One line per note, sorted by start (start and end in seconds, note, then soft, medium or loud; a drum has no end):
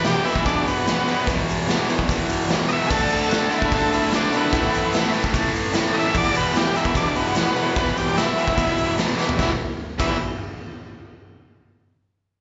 0.04 0.24 E2 medium
0.04 0.25 B2 loud
0.04 0.26 E3 medium
0.04 0.25 G4 loud
0.04 snare loud
0.04 open hi-hat medium
0.04 shaker loud
0.17 shaker soft
0.25 0.43 E2 medium
0.25 0.45 B2 medium
0.25 0.44 E3 loud
0.25 0.45 E4 loud
0.25 open hi-hat medium
0.25 shaker medium
0.36 kick medium
0.45 0.85 E2 medium
0.45 0.86 B2 loud
0.45 0.87 E3 loud
0.45 0.66 D4 loud
0.45 kick loud
0.45 open hi-hat medium
0.45 shaker loud
0.66 0.87 B3 medium
0.66 open hi-hat medium
0.66 shaker medium
0.78 shaker soft
0.87 1.06 E2 medium
0.87 1.07 B2 loud
0.87 1.07 E3 medium
0.87 1.27 B3 loud
0.87 snare loud
0.87 open hi-hat medium
0.87 shaker loud
0.99 shaker soft
1.07 1.26 E2 medium
1.07 1.26 B2 medium
1.07 1.27 E3 loud
1.07 open hi-hat medium
1.07 shaker medium
1.27 1.66 E2 medium
1.27 1.68 B2 medium
1.27 1.68 E3 loud
1.27 kick loud
1.27 open hi-hat loud
1.27 shaker medium
1.40 shaker soft
1.47 open hi-hat medium
1.47 shaker medium
1.60 shaker soft
1.68 1.87 E2 medium
1.68 1.88 B2 medium
1.68 1.88 E3 loud
1.68 snare loud
1.68 open hi-hat medium
1.68 shaker loud
1.88 2.08 E2 medium
1.88 2.09 B2 medium
1.88 2.09 E3 loud
1.88 open hi-hat medium
1.88 shaker medium
1.99 kick medium
1.99 shaker soft
2.09 2.48 E2 loud
2.09 2.49 B2 medium
2.09 2.49 E3 loud
2.09 kick loud
2.09 open hi-hat loud
2.09 shaker loud
2.29 open hi-hat medium
2.29 shaker medium
2.49 2.68 E2 medium
2.49 2.69 B2 medium
2.49 2.69 E3 medium
2.49 snare loud
2.49 open hi-hat medium
2.49 shaker loud
2.68 2.89 E2 medium
2.68 2.89 B2 medium
2.68 2.89 E3 medium
2.68 2.71 D#5 medium
2.68 open hi-hat medium
2.68 shaker medium
2.72 2.91 E5 loud
2.79 shaker soft
2.87 3.28 D3 medium
2.87 3.30 A3 loud
2.87 3.30 D4 loud
2.87 2.90 G#4 medium
2.87 kick loud
2.87 crash loud
2.87 shaker loud
2.92 3.11 A4 medium
3.09 3.51 A4 medium
3.09 open hi-hat medium
3.09 shaker medium
3.20 shaker soft
3.29 3.49 D3 medium
3.29 3.51 A3 loud
3.29 3.50 D4 loud
3.29 snare loud
3.29 open hi-hat medium
3.29 shaker loud
3.51 3.71 D3 medium
3.51 3.71 A3 medium
3.51 3.72 D4 medium
3.51 3.72 E4 medium
3.51 open hi-hat medium
3.51 shaker medium
3.62 kick medium
3.62 shaker soft
3.72 4.12 D3 medium
3.72 4.13 A3 medium
3.72 4.14 D4 loud
3.72 3.93 A4 loud
3.72 kick medium
3.72 open hi-hat medium
3.72 shaker loud
3.92 4.13 E4 medium
3.92 open hi-hat medium
3.92 shaker medium
4.03 shaker soft
4.11 4.32 D3 medium
4.11 4.33 A3 loud
4.11 4.33 D4 loud
4.11 snare loud
4.11 open hi-hat medium
4.11 shaker loud
4.24 shaker soft
4.32 4.51 D3 loud
4.32 4.52 A3 medium
4.32 5.11 B3 medium
4.32 4.52 D4 medium
4.32 open hi-hat medium
4.32 shaker medium
4.37 5.13 E4 medium
4.52 4.92 A2 medium
4.52 4.93 E3 loud
4.52 4.93 A3 loud
4.52 kick loud
4.52 open hi-hat medium
4.52 shaker loud
4.65 shaker soft
4.73 open hi-hat medium
4.73 shaker medium
4.93 5.13 A2 medium
4.93 5.15 E3 loud
4.93 5.14 A3 loud
4.93 snare loud
4.93 open hi-hat medium
4.93 shaker loud
5.13 5.32 A2 medium
5.13 5.33 E3 medium
5.13 5.33 A3 medium
5.13 open hi-hat medium
5.13 shaker medium
5.24 kick medium
5.24 shaker soft
5.33 5.72 A2 loud
5.33 5.74 E3 loud
5.33 5.73 A3 loud
5.33 kick medium
5.33 open hi-hat medium
5.33 shaker loud
5.54 open hi-hat medium
5.54 shaker medium
5.65 shaker soft
5.73 5.93 A2 medium
5.73 5.94 E3 loud
5.73 5.93 A3 loud
5.73 snare loud
5.73 open hi-hat loud
5.73 shaker loud
5.94 6.13 A2 medium
5.94 6.15 E3 medium
5.94 6.14 A3 medium
5.94 5.96 D#5 medium
5.94 open hi-hat medium
5.99 6.16 E5 loud
6.14 6.54 E2 loud
6.14 6.54 B2 loud
6.14 6.56 E3 loud
6.14 6.36 D5 loud
6.14 kick loud
6.14 crash loud
6.14 shaker medium
6.25 shaker soft
6.35 6.56 B4 loud
6.35 open hi-hat medium
6.35 shaker medium
6.55 6.74 E2 medium
6.55 6.75 B2 loud
6.55 6.76 E3 loud
6.55 6.76 G4 loud
6.55 snare loud
6.55 open hi-hat medium
6.55 shaker medium
6.75 6.94 E2 medium
6.75 6.94 B2 medium
6.75 6.95 E3 medium
6.75 6.96 E4 loud
6.75 open hi-hat medium
6.75 shaker medium
6.85 kick loud
6.85 shaker soft
6.95 7.35 E2 medium
6.95 7.34 B2 loud
6.95 7.36 E3 loud
6.95 7.16 D4 loud
6.95 kick loud
6.95 open hi-hat medium
6.95 shaker loud
7.15 7.36 B3 medium
7.15 open hi-hat medium
7.15 shaker medium
7.26 shaker soft
7.35 7.55 E2 medium
7.35 7.54 B2 medium
7.35 7.56 E3 medium
7.35 7.77 B3 loud
7.35 snare loud
7.35 open hi-hat medium
7.35 shaker loud
7.55 7.74 E2 medium
7.55 7.75 B2 loud
7.55 7.75 E3 loud
7.55 open hi-hat medium
7.55 shaker medium
7.76 8.14 E2 loud
7.76 8.14 B2 medium
7.76 8.15 E3 loud
7.76 7.97 B4 medium
7.76 kick loud
7.76 open hi-hat medium
7.76 shaker medium
7.86 shaker soft
7.97 8.17 G4 medium
7.97 open hi-hat medium
7.97 shaker medium
8.15 8.35 E2 medium
8.15 8.36 B2 loud
8.15 8.36 E3 loud
8.15 8.95 E4 loud
8.15 snare loud
8.15 open hi-hat medium
8.15 shaker medium
8.37 8.55 E2 medium
8.37 8.56 B2 medium
8.37 8.56 E3 loud
8.37 open hi-hat medium
8.37 shaker medium
8.48 kick medium
8.56 8.97 E2 medium
8.56 8.97 B2 loud
8.56 8.98 E3 loud
8.56 kick loud
8.56 open hi-hat medium
8.56 shaker loud
8.78 open hi-hat medium
8.78 shaker medium
8.88 shaker soft
8.98 9.16 E2 medium
8.98 9.16 B2 medium
8.98 9.17 E3 medium
8.98 snare loud
8.98 open hi-hat loud
8.98 shaker loud
9.17 9.36 E2 medium
9.17 9.37 B2 medium
9.17 9.37 E3 medium
9.17 snare medium
9.17 shaker medium
9.29 floor tom loud
9.29 shaker soft
9.38 9.50 E2 loud
9.38 9.50 B2 loud
9.38 9.51 E3 loud
9.38 9.50 E4 medium
9.38 kick loud
9.38 snare medium
9.38 shaker medium
9.98 10.15 E2 medium
9.98 10.15 B2 loud
9.98 10.15 E3 loud
9.98 10.18 E4 loud
9.98 kick loud
9.98 crash medium
9.98 shaker medium